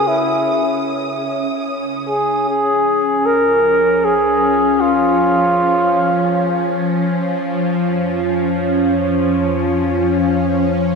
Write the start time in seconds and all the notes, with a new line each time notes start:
Already playing: C#3 C#4 D#6
0.07 E4
2.08 G#4
2.43 C#2 F3 C#4
2.49 G#4
3.26 A#4
4.05 G#4
4.81 F4
7.16 F2